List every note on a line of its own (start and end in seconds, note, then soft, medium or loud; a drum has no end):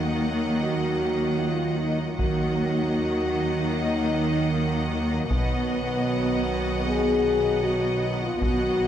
0.00 2.14 D#2 soft
0.00 2.14 D#3 soft
0.00 2.15 D#3 soft
0.00 2.15 F#3 soft
0.00 0.59 A#3 medium
0.00 2.15 A#3 soft
0.00 2.15 D#5 soft
0.00 2.14 F#5 soft
0.62 1.40 F#4 medium
1.41 1.79 F4 medium
1.78 1.98 D#4 medium
2.00 2.19 F4 medium
2.18 5.26 D#2 soft
2.18 5.26 D#3 medium
2.18 5.26 D#3 soft
2.18 5.26 F#3 soft
2.18 5.26 A#3 soft
2.18 3.74 F#4 medium
2.18 5.26 D#5 soft
2.18 5.26 F#5 soft
2.18 taiko medium
3.74 4.52 D#4 medium
4.52 5.28 A#3 medium
5.29 8.38 B1 medium
5.29 8.38 B2 medium
5.29 8.24 D#3 medium
5.29 8.24 F#3 medium
5.29 6.69 B3 medium
5.29 8.38 B3 soft
5.29 8.38 D#5 medium
5.29 8.37 F#5 soft
5.29 taiko medium
6.86 7.62 G#4 medium
7.63 8.03 F#4 medium
8.02 8.21 D#4 medium
8.21 8.41 F4 medium
8.41 8.88 B1 medium
8.41 8.88 B2 medium
8.41 8.88 D#3 medium
8.41 8.88 F#3 medium
8.41 8.88 B3 medium
8.41 8.88 F#4 loud
8.41 8.88 D#5 medium
8.41 8.88 F#5 medium
8.41 taiko medium